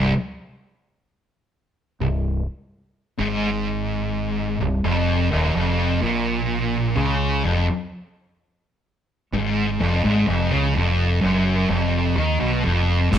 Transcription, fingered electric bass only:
0.00 0.11 C1 medium
2.01 2.45 C1 medium
3.20 4.57 G#1 loud
4.61 4.82 C1 medium
4.84 5.28 F1 medium
5.33 5.54 D#1 medium
5.54 5.98 F1 medium
6.03 6.93 A#1 medium
6.97 7.41 C#2 loud
7.44 7.66 F1 medium
9.33 9.77 G#1 medium
9.81 10.03 F1 loud
10.04 10.26 G#1 loud
10.28 10.50 F1 loud
10.52 10.74 C#2 medium
10.76 11.20 F1 medium
11.23 11.67 F#1 medium
11.70 12.14 F1 medium
12.17 12.39 D#2 medium
12.41 12.64 B1 medium
12.65 13.09 F1 medium
13.13 13.19 G#1 medium

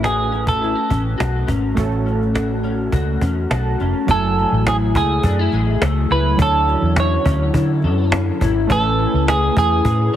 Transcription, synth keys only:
0.00 1.72 A3 medium
0.00 1.75 C#4 medium
0.00 1.74 F#4 medium
0.00 1.75 B4 medium
1.75 4.03 A3 medium
1.75 4.04 C#4 medium
1.75 4.05 F#4 medium
1.79 4.05 A4 medium
3.50 4.04 A5 medium
4.06 6.34 F#3 medium
4.06 6.35 A3 medium
4.06 6.36 E4 medium
4.11 6.37 G#5 medium
6.36 8.64 F#3 medium
6.36 8.65 D4 medium
6.36 8.66 E4 medium
6.41 8.67 C#5 medium
8.67 10.16 A3 medium
8.67 10.16 C#4 medium
8.67 10.16 G#5 medium
8.72 10.16 B4 medium

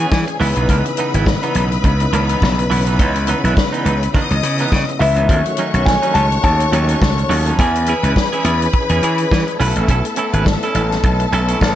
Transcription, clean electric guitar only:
0.00 0.09 B3 medium
0.11 muted clean electric guitar stroke soft
0.28 muted clean electric guitar stroke soft
0.40 0.57 E3 medium
0.40 0.56 B3 medium
0.40 0.56 E4 medium
0.56 0.68 E3 medium
0.56 0.67 B3 medium
0.56 0.67 D#4 medium
0.69 0.90 E3 medium
0.69 0.85 B3 medium
0.69 0.84 D#4 medium
0.85 muted clean electric guitar stroke soft
0.98 1.11 E3 medium
0.98 1.12 B3 medium
0.98 1.12 D#4 medium
1.14 1.26 E3 soft
1.14 1.25 B3 soft
1.14 1.25 E4 medium
1.43 1.54 E3 medium
1.43 1.55 B3 medium
1.43 1.56 D#4 medium
1.55 1.69 E3 medium
1.55 1.69 B3 medium
1.55 1.70 D#4 medium
1.72 muted clean electric guitar stroke medium
1.84 muted clean electric guitar stroke soft
2.01 muted clean electric guitar stroke soft
2.13 2.29 E3 medium
2.13 2.29 B3 medium
2.13 2.27 D#4 medium
2.29 2.40 E3 medium
2.29 2.40 B3 medium
2.29 2.39 D#4 medium
2.58 muted clean electric guitar stroke soft
2.70 2.87 E3 medium
2.70 2.86 B3 medium
2.70 2.86 E4 medium
2.86 2.98 E3 medium
2.86 2.97 B3 medium
2.86 2.97 D#4 medium
2.99 3.16 E3 medium
2.99 3.16 B3 medium
2.99 3.14 D#4 medium
3.15 muted clean electric guitar stroke soft
3.28 3.41 E3 medium
3.28 3.42 B3 medium
3.28 3.42 D#4 medium
3.44 3.56 E3 medium
3.44 3.55 B3 medium
3.44 3.55 E4 medium
3.57 muted clean electric guitar stroke soft
3.72 3.84 E3 medium
3.72 3.85 B3 medium
3.72 3.85 D#4 medium
3.85 3.99 E3 medium
3.85 3.99 B3 medium
3.85 4.00 D#4 medium
4.14 4.35 E3 medium
4.14 4.31 B3 medium
4.14 4.30 D#4 medium
4.31 muted clean electric guitar stroke soft
4.44 muted clean electric guitar stroke soft
4.60 4.71 E3 soft
4.60 4.71 B3 medium
4.60 4.70 D#4 medium
4.89 muted clean electric guitar stroke soft
5.01 5.18 E3 medium
5.01 5.17 B3 loud
5.01 5.17 E4 medium
5.17 5.28 E3 medium
5.17 5.28 B3 medium
5.17 5.27 D#4 medium
5.29 5.50 F#3 medium
5.29 5.46 C#4 medium
5.29 5.44 D#4 medium
5.46 muted clean electric guitar stroke soft
5.58 5.72 F#3 medium
5.58 5.72 C#4 medium
5.58 5.72 D#4 medium
5.74 5.86 F#3 soft
5.74 5.85 C#4 soft
5.74 5.85 F#4 medium
5.87 muted clean electric guitar stroke soft
6.02 6.14 F#3 medium
6.02 6.15 C#4 medium
6.02 6.16 D#4 medium
6.15 6.29 F#3 medium
6.15 6.29 C#4 medium
6.15 6.30 D#4 medium
6.31 muted clean electric guitar stroke soft
6.43 muted clean electric guitar stroke soft
6.60 muted clean electric guitar stroke soft
6.73 6.89 F#3 medium
6.73 6.88 C#4 medium
6.73 6.87 D#4 medium
6.88 7.00 F#3 medium
6.88 7.00 C#4 medium
6.88 6.99 D#4 medium
7.18 muted clean electric guitar stroke soft
7.30 7.47 F#3 medium
7.30 7.46 C#4 medium
7.30 7.46 F#4 medium
7.47 7.58 F#3 medium
7.47 7.58 C#4 medium
7.47 7.57 D#4 medium
7.59 7.76 C#4 medium
7.59 7.75 E4 medium
7.59 7.74 G#4 medium
7.75 muted clean electric guitar stroke soft
7.88 8.01 C#4 medium
7.88 8.02 E4 medium
7.88 8.02 G#4 medium
8.04 8.15 C#4 soft
8.04 8.15 E4 medium
8.04 8.14 B4 medium
8.17 muted clean electric guitar stroke soft
8.33 8.43 C#4 medium
8.33 8.44 E4 medium
8.33 8.45 G#4 medium
8.45 8.58 C#4 medium
8.45 8.59 E4 medium
8.45 8.59 G#4 medium
8.61 muted clean electric guitar stroke medium
8.74 muted clean electric guitar stroke soft
8.90 9.01 C#4 medium
8.90 9.01 E4 medium
8.90 9.00 G#4 medium
9.02 9.20 C#4 medium
9.02 9.19 E4 medium
9.02 9.18 G#4 loud
9.19 muted clean electric guitar stroke soft
9.32 muted clean electric guitar stroke soft
9.47 muted clean electric guitar stroke soft
9.60 9.77 C#4 medium
9.60 9.76 E4 medium
9.60 9.76 B4 loud
9.76 9.88 C#4 medium
9.76 9.87 E4 medium
9.76 9.87 A4 medium
9.90 10.06 C#4 medium
9.90 10.06 E4 medium
9.90 10.04 A4 medium
10.05 muted clean electric guitar stroke soft
10.17 10.31 C#4 medium
10.17 10.31 E4 medium
10.17 10.32 A4 medium
10.33 10.45 C#4 soft
10.33 10.45 E4 soft
10.33 10.44 B4 medium
10.47 muted clean electric guitar stroke soft
10.64 10.74 C#4 medium
10.64 10.75 E4 medium
10.64 10.75 A4 medium
10.75 10.88 C#4 medium
10.75 10.89 E4 medium
10.75 10.89 A4 medium
11.05 muted clean electric guitar stroke soft
11.20 muted clean electric guitar stroke medium
11.33 11.49 C#4 medium
11.33 11.48 E4 medium
11.33 11.47 A4 medium
11.48 11.60 C#4 medium
11.48 11.59 E4 medium
11.48 11.59 A4 medium
11.61 muted clean electric guitar stroke soft

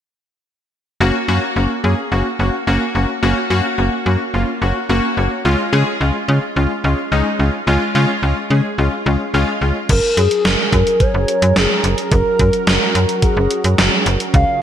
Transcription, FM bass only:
1.00 1.11 F#1 loud
1.28 1.39 F#2 loud
1.56 1.67 F#1 loud
1.84 1.95 F#2 loud
2.12 2.22 F#1 loud
2.39 2.50 F#1 loud
2.67 2.78 F#1 loud
2.95 3.06 F#1 medium
3.23 3.34 F#1 loud
3.50 3.61 F#2 medium
3.78 3.89 F#1 medium
4.06 4.17 F#2 loud
4.34 4.45 F#1 medium
4.62 4.72 F#1 loud
4.89 5.00 F#1 loud
5.17 5.28 F#1 loud
5.45 5.56 C#2 loud
5.73 5.84 C#3 loud
6.01 6.11 C#2 loud
6.28 6.39 C#3 loud
6.56 6.67 C#2 loud
6.84 6.95 C#2 loud
7.12 7.22 C#2 loud
7.39 7.50 C#2 loud
7.67 7.78 C#2 loud
7.95 8.06 C#3 loud
8.23 8.33 C#2 loud
8.50 8.61 C#3 loud
8.78 8.89 C#2 loud
9.06 9.17 C#2 loud
9.34 9.45 C#2 loud
9.61 9.72 C#2 medium
9.89 10.00 F#1 loud
10.17 10.28 F#2 loud
10.45 10.56 F#1 loud
10.73 10.83 F#2 loud
11.14 11.25 F#1 loud
11.42 11.53 F#2 loud
11.56 11.67 F#1 loud
11.84 11.95 F#1 loud
12.12 12.22 F#1 loud
12.40 12.50 F#2 loud
12.67 12.78 F#1 loud
12.95 13.06 F#2 loud
13.37 13.47 F#1 loud
13.64 13.75 F#2 medium
13.78 13.89 F#1 loud
14.06 14.17 F#1 loud
14.34 14.45 C#2 loud

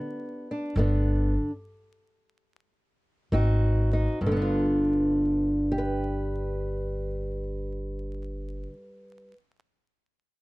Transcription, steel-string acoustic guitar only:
0.00 0.71 D3 medium
0.00 0.73 B3 soft
0.00 0.50 D4 soft
0.00 3.33 G4 medium
0.51 0.74 D4 soft
0.77 1.49 G2 medium
0.77 1.50 D3 medium
0.77 1.34 B3 medium
0.77 1.50 D4 medium
3.32 4.15 G#2 medium
3.32 4.18 C4 medium
3.32 3.92 D#4 medium
3.32 4.19 F#4 medium
3.93 4.18 D#4 medium
4.21 8.68 G2 medium
4.26 8.73 D3 medium
4.32 5.71 B3 medium
4.37 5.78 D4 medium
4.42 8.88 F4 medium
5.72 9.32 G4 medium
5.78 9.36 B4 medium

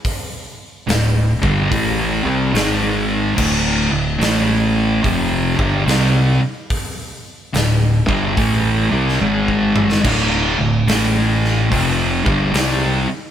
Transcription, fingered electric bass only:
0.87 1.38 D1 medium
1.43 1.69 G1 loud
1.72 2.22 A1 loud
2.25 2.52 C2 loud
2.54 3.33 G#1 loud
3.38 3.88 D1 medium
3.92 4.19 D1 medium
4.20 5.00 A1 medium
5.05 5.55 F1 loud
5.59 5.85 G1 loud
5.86 6.37 C2 medium
7.54 8.05 D1 medium
8.09 8.36 G1 loud
8.38 8.88 A1 medium
8.92 9.19 C2 medium
9.21 10.00 G#1 loud
10.05 10.55 D1 loud
10.60 10.86 D1 medium
10.88 11.67 A1 medium
11.72 12.22 F1 loud
12.27 12.53 G1 loud
12.55 13.05 C2 medium

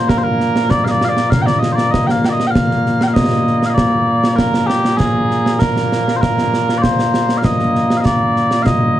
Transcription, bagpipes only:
0.00 9.00 A#2 medium
0.00 9.00 A#3 medium
0.09 0.18 A#4 loud
0.18 0.23 C5 medium
0.23 0.70 A#4 loud
0.70 0.84 D5 loud
0.84 0.90 D#5 medium
0.84 0.88 F5 medium
0.90 1.05 D5 loud
1.05 1.09 F5 loud
1.09 1.30 D5 loud
1.30 1.42 F5 medium
1.42 1.46 G5 medium
1.46 1.59 D5 medium
1.59 1.72 D#5 medium
1.72 1.75 C5 medium
1.72 1.91 D5 loud
1.91 2.07 D#5 loud
2.07 2.11 G5 medium
2.11 2.26 F5 medium
2.26 2.31 D5 medium
2.26 2.29 G5 medium
2.31 2.47 D#5 loud
2.47 3.03 F5 loud
2.47 2.51 G5 loud
3.03 3.08 G5 medium
3.08 3.13 F5 medium
3.13 3.66 D#5 medium
3.66 3.74 D#5 medium
3.66 3.69 F5 medium
3.74 4.36 D5 medium
4.36 4.67 A#4 medium
4.67 4.97 G4 medium
4.97 5.59 G#4 medium
5.59 6.16 A#4 medium
6.16 6.21 C5 medium
6.21 6.78 A#4 medium
6.78 6.82 D5 medium
6.82 7.38 C5 medium
7.38 7.44 F5 medium
7.44 7.97 D#5 loud
7.97 8.05 D#5 medium
7.97 8.00 F5 medium
8.05 8.62 D5 medium
8.62 9.00 D#5 loud
8.62 8.66 F5 loud

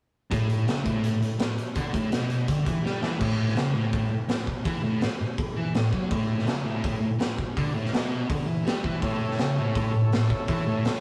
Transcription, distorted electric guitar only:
0.30 0.66 A2 loud
0.67 0.83 C#3 loud
0.84 1.19 A2 medium
1.21 1.35 A2 medium
1.39 1.54 A2 medium
1.76 1.93 D3 loud
1.93 2.11 A2 loud
2.12 2.47 B2 loud
2.48 2.65 D3 loud
2.65 2.83 E3 medium
2.83 3.01 G3 loud
3.02 3.19 E3 loud
3.20 3.55 A2 loud
3.55 3.73 C#3 loud
3.74 4.08 A2 medium
4.10 4.25 A2 medium
4.28 4.43 A2 medium
4.64 4.82 E3 loud
4.84 5.01 A2 loud
5.03 muted distorted electric guitar stroke medium
5.21 muted distorted electric guitar stroke medium
5.56 5.73 E3 loud
5.75 5.89 A2 medium
5.93 6.10 F#3 loud
6.11 6.46 A2 loud
6.47 6.64 C#3 loud
6.65 7.00 A2 loud
7.01 7.16 A2 medium
7.19 7.34 A2 medium
7.57 7.74 D3 loud
7.74 7.92 A2 loud
7.93 8.28 B2 loud
8.30 8.47 D3 medium
8.47 8.65 E3 loud
8.65 8.83 G3 loud
8.84 9.01 E3 loud
9.01 9.37 A2 loud
9.39 9.56 C#3 loud
9.59 9.93 A2 medium
9.94 10.08 A2 medium
10.13 10.27 A2 medium
10.49 10.66 E3 loud
10.66 10.84 A2 loud
10.85 muted distorted electric guitar stroke medium

